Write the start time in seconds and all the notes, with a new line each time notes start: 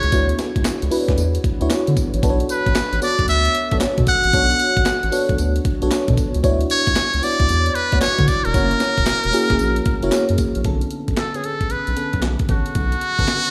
Already playing: B3 D4 E4 F#4 G#4 A4 C#5 D5
0.03 C#2, closed hi-hat
0.12 D2 B3 D4 E4 F#4 C#5, kick, closed hi-hat, tambourine
0.29 closed hi-hat
0.39 snare, closed hi-hat, tambourine
0.56 C#2, kick, closed hi-hat
0.65 C#2, snare, clap, closed hi-hat, tambourine
0.82 C#2, closed hi-hat
0.91 B3 D4 E4 F#4 B4, open hi-hat, tambourine
1.08 D2, kick, snare, closed hi-hat
1.18 E2, closed hi-hat, tambourine
1.35 closed hi-hat
1.44 kick, closed hi-hat
1.61 D2 B3 D4 E4 F#4 C#5, closed hi-hat
1.70 snare, clap, closed hi-hat, tambourine
1.87 D3, closed hi-hat
1.97 kick, closed hi-hat, tambourine
2.14 A1, closed hi-hat
2.22 B1 B3 D4 F#4 A4 B4, kick, closed hi-hat, tambourine
2.30 C#5
2.40 closed hi-hat
2.49 B4, closed hi-hat, tambourine
2.66 A1, kick, closed hi-hat
2.75 A1, snare, clap, closed hi-hat, tambourine
2.93 A1, closed hi-hat
3.01 B3 D4 F#4 A4 C#5 D5, open hi-hat, tambourine
3.19 B1, kick, closed hi-hat
3.28 D2 E5, closed hi-hat, tambourine
3.45 closed hi-hat
3.55 closed hi-hat
3.71 B1 B3 D4 F#4 A4 C#5, kick, closed hi-hat
3.81 snare, clap, closed hi-hat, tambourine
3.98 B2, kick, closed hi-hat
4.07 F#5, kick, closed hi-hat, tambourine
4.24 A1, closed hi-hat
4.33 B1 B3 D4 F#4 A4 C#5, kick, closed hi-hat, tambourine
4.50 closed hi-hat
4.59 closed hi-hat, tambourine
4.77 A1, kick, closed hi-hat
4.86 A1, snare, clap, closed hi-hat, tambourine
5.03 A1, closed hi-hat
5.12 B3 D4 F#4 A4 C#5, open hi-hat, tambourine
5.29 B1, kick, closed hi-hat
5.38 D2, closed hi-hat, tambourine
5.56 closed hi-hat
5.65 kick, closed hi-hat
5.82 B1 B3 D4 F#4 A4 C#5, closed hi-hat
5.91 snare, clap, closed hi-hat, tambourine
6.08 B2, kick, closed hi-hat
6.17 kick, closed hi-hat, tambourine
6.34 C#2, closed hi-hat
6.43 D2 B3 D4 E4 F#4 C#5, kick, closed hi-hat, tambourine
6.61 closed hi-hat
6.70 C#5, closed hi-hat, tambourine
6.87 C#2, kick, closed hi-hat
6.96 C#2, snare, clap, closed hi-hat, tambourine
7.14 C#2, closed hi-hat
7.22 B3 D4 E4 F#4 D5, open hi-hat, tambourine
7.40 D2, kick, closed hi-hat
7.49 E2, closed hi-hat, tambourine
7.66 closed hi-hat
7.75 B4, closed hi-hat
7.92 D2 B3 D4 E4 F#4 C#5, kick, closed hi-hat
8.01 C#5, snare, clap, closed hi-hat, tambourine
8.18 D3, kick, closed hi-hat
8.28 D5, kick, closed hi-hat, tambourine
8.45 E1 A#4, closed hi-hat
8.53 F#1 A#3 C#4 E4 F#4 C#5, kick, closed hi-hat, tambourine
8.71 closed hi-hat
8.80 snare, closed hi-hat, tambourine
8.98 E1, kick, closed hi-hat
9.06 E1, snare, clap, closed hi-hat, tambourine
9.24 E1, closed hi-hat
9.33 A#3 C#4 E4 F#4 G#4, open hi-hat, tambourine
9.50 F#1, kick, snare, closed hi-hat
9.59 A#1, closed hi-hat, tambourine
9.76 closed hi-hat
9.86 kick, closed hi-hat
10.03 F#1 A#3 C#4 E4 F#4 C#5, closed hi-hat
10.12 snare, clap, closed hi-hat, tambourine
10.29 F#2, closed hi-hat
10.38 kick, closed hi-hat, tambourine
10.55 A#1, closed hi-hat
10.64 B1 D3 B3 C#4 A4, kick, closed hi-hat
10.81 closed hi-hat
10.91 closed hi-hat
11.08 A1, kick, closed hi-hat
11.17 A4, snare, clap, closed hi-hat
11.34 D3 B3 C#4 G#4, closed hi-hat
11.44 A4, closed hi-hat
11.61 kick, closed hi-hat
11.70 B1 B4, closed hi-hat
11.87 B1, closed hi-hat
11.96 D3 B3 C#4 A4, closed hi-hat
12.13 B1, kick, closed hi-hat
12.22 B1, snare, clap, closed hi-hat
12.39 kick, closed hi-hat
12.49 A1 D3 B3 C#4 F#4 A4, kick, closed hi-hat
12.66 closed hi-hat
12.75 B1, kick, closed hi-hat
12.92 closed hi-hat
13.01 closed hi-hat
13.18 A1 C#3 B3 C#4 A4, kick, closed hi-hat
13.25 D3, snare, clap, closed hi-hat
13.45 closed hi-hat